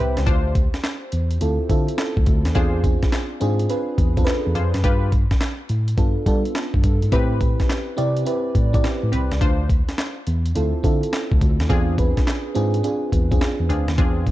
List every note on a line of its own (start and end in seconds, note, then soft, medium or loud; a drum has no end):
0.00 0.15 C2 medium
0.00 0.17 C4 medium
0.00 0.28 C4 loud
0.00 0.29 E4 medium
0.00 0.17 G4 medium
0.00 0.19 G4 medium
0.00 0.17 B4 medium
0.00 0.29 B4 loud
0.00 0.18 C5 loud
0.00 0.28 D5 soft
0.00 0.16 E5 medium
0.00 0.29 G5 medium
0.17 0.26 C#2 medium
0.17 0.45 G4 soft
0.17 0.45 C5 medium
0.17 snare medium
0.17 closed hi-hat medium
0.26 0.67 D2 medium
0.26 0.53 D4 medium
0.26 0.54 F4 medium
0.26 0.54 C5 loud
0.26 kick loud
0.26 closed hi-hat medium
0.55 kick medium
0.55 closed hi-hat medium
0.74 snare medium
0.74 closed hi-hat medium
0.84 snare loud
0.84 clap medium
0.84 closed hi-hat medium
1.12 1.37 E2 medium
1.12 closed hi-hat medium
1.31 closed hi-hat medium
1.41 1.57 D2 medium
1.41 1.63 C4 medium
1.41 1.63 E4 medium
1.41 1.63 F4 medium
1.41 1.64 A4 medium
1.41 closed hi-hat medium
1.69 1.86 D3 medium
1.69 2.27 C4 medium
1.69 2.27 E4 medium
1.69 2.28 F4 medium
1.69 2.28 A4 loud
1.69 kick medium
1.69 closed hi-hat medium
1.88 closed hi-hat medium
1.98 snare loud
1.98 clap medium
1.98 closed hi-hat medium
2.17 2.25 D2 medium
2.17 kick medium
2.26 2.43 D2 medium
2.26 kick medium
2.26 closed hi-hat medium
2.45 2.54 D#2 medium
2.45 snare medium
2.45 closed hi-hat medium
2.55 2.96 E2 loud
2.55 2.77 C4 medium
2.55 2.82 D4 loud
2.55 2.77 D4 medium
2.55 2.82 F4 medium
2.55 2.78 F4 medium
2.55 2.82 G#4 medium
2.55 2.78 G#4 loud
2.55 2.82 C5 loud
2.55 kick loud
2.55 closed hi-hat medium
2.83 3.25 C4 medium
2.83 3.25 D4 medium
2.83 3.26 F4 medium
2.83 3.26 G#4 medium
2.83 kick medium
2.83 closed hi-hat medium
3.03 kick medium
3.03 snare medium
3.03 closed hi-hat soft
3.12 snare loud
3.12 clap medium
3.12 closed hi-hat medium
3.40 3.66 G#2 medium
3.40 3.63 C4 loud
3.40 3.63 D4 medium
3.40 3.63 F4 medium
3.40 3.64 G#4 loud
3.40 closed hi-hat medium
3.59 closed hi-hat medium
3.69 3.98 C4 medium
3.69 3.98 D4 medium
3.69 3.99 F4 medium
3.69 3.99 B4 loud
3.69 closed hi-hat medium
3.98 4.22 E2 medium
3.98 kick medium
3.98 closed hi-hat medium
4.17 4.84 C4 medium
4.17 4.84 D4 medium
4.17 4.84 F4 medium
4.17 4.22 A4 medium
4.17 kick medium
4.17 closed hi-hat medium
4.24 4.88 B4 loud
4.24 snare loud
4.24 clap medium
4.24 closed hi-hat medium
4.46 4.54 E2 medium
4.55 4.72 F2 medium
4.55 4.74 D4 medium
4.55 4.74 F4 medium
4.55 4.74 G#4 medium
4.55 4.74 C5 medium
4.55 closed hi-hat medium
4.74 4.83 F#2 medium
4.74 snare medium
4.74 closed hi-hat medium
4.84 5.24 G2 loud
4.84 5.11 F4 loud
4.84 5.11 G4 medium
4.84 5.11 B4 loud
4.84 kick loud
4.84 closed hi-hat medium
5.12 kick medium
5.12 closed hi-hat medium
5.31 kick medium
5.31 snare medium
5.31 closed hi-hat soft
5.41 snare loud
5.41 clap medium
5.41 closed hi-hat medium
5.69 5.94 A2 medium
5.69 closed hi-hat medium
5.88 closed hi-hat medium
5.97 6.14 G2 medium
5.97 6.20 B3 medium
5.97 6.20 D4 medium
5.97 6.20 F4 medium
5.97 6.21 A4 medium
5.97 kick medium
5.97 closed hi-hat medium
6.26 6.43 G3 loud
6.26 6.84 B3 medium
6.26 6.84 D4 medium
6.26 6.85 F4 medium
6.26 6.85 A4 loud
6.26 kick medium
6.26 closed hi-hat medium
6.45 closed hi-hat medium
6.55 snare loud
6.55 clap medium
6.55 closed hi-hat medium
6.74 6.82 G2 medium
6.74 kick loud
6.84 7.00 G2 medium
6.84 kick medium
6.84 closed hi-hat medium
7.02 7.11 G#2 medium
7.02 closed hi-hat medium
7.12 7.53 A2 loud
7.12 7.34 C4 medium
7.12 7.39 C4 loud
7.12 7.34 E4 medium
7.12 7.39 G4 medium
7.12 7.35 G4 medium
7.12 7.40 B4 loud
7.12 7.35 B4 loud
7.12 kick loud
7.12 closed hi-hat medium
7.40 7.82 C4 medium
7.40 7.82 E4 medium
7.40 7.83 G4 medium
7.40 7.83 B4 medium
7.40 kick medium
7.40 closed hi-hat medium
7.60 kick medium
7.60 snare medium
7.60 closed hi-hat soft
7.70 snare loud
7.70 clap medium
7.70 closed hi-hat medium
7.97 8.23 C3 medium
7.97 8.20 C4 loud
7.97 8.20 E4 medium
7.97 8.20 G4 medium
7.97 8.20 D5 loud
7.97 closed hi-hat medium
8.17 closed hi-hat medium
8.25 8.55 C4 medium
8.25 8.55 E4 medium
8.25 8.55 G4 medium
8.25 8.56 B4 medium
8.25 closed hi-hat medium
8.55 8.79 A2 medium
8.55 kick medium
8.55 closed hi-hat medium
8.73 9.40 C4 medium
8.73 9.41 E4 medium
8.73 9.41 G4 medium
8.73 9.41 D5 loud
8.73 kick loud
8.73 closed hi-hat medium
8.84 snare medium
8.84 clap medium
8.84 closed hi-hat medium
9.03 9.11 A2 medium
9.12 9.29 C2 medium
9.12 9.31 C4 medium
9.12 9.31 G4 medium
9.12 9.31 B4 medium
9.12 closed hi-hat medium
9.31 9.40 C#2 medium
9.31 snare medium
9.31 closed hi-hat medium
9.41 9.81 D2 medium
9.41 9.68 D4 medium
9.41 9.68 F4 medium
9.41 9.68 C5 loud
9.41 kick loud
9.41 closed hi-hat medium
9.70 kick medium
9.70 closed hi-hat medium
9.89 snare medium
9.89 closed hi-hat soft
9.98 snare loud
9.98 clap medium
9.98 closed hi-hat medium
10.27 10.51 E2 medium
10.27 closed hi-hat medium
10.46 closed hi-hat medium
10.55 10.72 D2 medium
10.55 10.77 C4 medium
10.55 10.78 E4 medium
10.55 10.78 F4 medium
10.55 10.78 A4 medium
10.55 closed hi-hat medium
10.83 11.00 D3 loud
10.83 11.41 C4 medium
10.83 11.41 E4 medium
10.83 11.42 F4 medium
10.83 11.42 A4 medium
10.83 kick medium
10.83 closed hi-hat medium
11.03 closed hi-hat medium
11.13 snare loud
11.13 clap medium
11.13 closed hi-hat medium
11.32 11.40 D2 medium
11.32 kick medium
11.41 11.57 D2 medium
11.41 kick medium
11.41 closed hi-hat medium
11.60 11.69 D#2 medium
11.60 snare medium
11.60 closed hi-hat medium
11.69 12.10 E2 loud
11.69 11.91 C4 loud
11.69 11.96 C4 loud
11.69 11.92 D4 medium
11.69 11.97 D4 medium
11.69 11.92 F4 medium
11.69 11.97 F4 medium
11.69 11.92 G#4 loud
11.69 11.97 G#4 loud
11.69 kick loud
11.69 closed hi-hat medium
11.98 12.40 C4 medium
11.98 12.40 D4 medium
11.98 12.40 F4 medium
11.98 12.40 B4 medium
11.98 kick medium
11.98 closed hi-hat medium
12.17 kick medium
12.17 snare medium
12.17 closed hi-hat medium
12.27 snare loud
12.27 clap medium
12.27 closed hi-hat medium
12.55 12.80 G#2 medium
12.55 12.77 C4 loud
12.55 12.77 D4 loud
12.55 12.78 F4 medium
12.55 12.78 G#4 loud
12.55 closed hi-hat medium
12.74 closed hi-hat medium
12.83 13.12 C4 medium
12.83 13.13 D4 medium
12.83 13.13 F4 medium
12.83 13.13 G#4 loud
12.83 closed hi-hat medium
13.12 13.37 E2 medium
13.12 kick medium
13.12 closed hi-hat medium
13.31 14.05 C4 medium
13.31 14.05 D4 medium
13.31 14.05 F4 medium
13.31 14.06 G#4 medium
13.31 kick medium
13.31 closed hi-hat medium
13.41 snare loud
13.41 clap medium
13.41 closed hi-hat medium
13.60 13.68 E2 medium
13.69 13.86 D2 medium
13.69 13.88 C4 medium
13.69 13.88 D4 medium
13.69 13.88 F4 medium
13.69 13.88 G#4 medium
13.69 closed hi-hat medium
13.88 13.97 D#2 medium
13.88 snare medium
13.88 closed hi-hat medium
13.98 14.31 E2 loud
13.98 14.25 C4 medium
13.98 14.25 D4 medium
13.98 14.25 F4 medium
13.98 14.25 G#4 loud
13.98 kick loud
13.98 closed hi-hat medium
14.27 kick medium
14.27 closed hi-hat medium